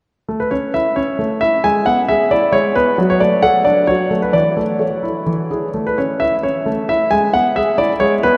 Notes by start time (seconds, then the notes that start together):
0.28 A3
0.40 B4
0.51 C#4 C#5
0.74 E4 E5
0.96 C#4 C#5
1.19 A3
1.41 E4 E5
1.64 G#3 G#5
1.86 B3 F#5
2.08 G#4 E5
2.31 E4 D5
2.52 G#3 C#5
2.75 B3 B4
2.98 F#3
3.10 C#5
3.20 A3 D5
3.42 A4 F#5
3.65 D4 D5
3.87 F#3 C#5
4.11 A3
4.22 B4
4.33 E3 D5
4.57 A3
4.79 A4 C#5
5.03 E4
5.26 E3
5.51 E4 G#4
5.74 A3
5.87 B4
5.98 C#4 C#5
6.20 E4 E5
6.43 C#4 C#5
6.66 A3
6.89 E4 E5
7.11 G#3 G#5
7.34 B3 F#5
7.56 G#4 E5
7.78 E4 D5
8.00 G#3 C#5
8.23 B3 B4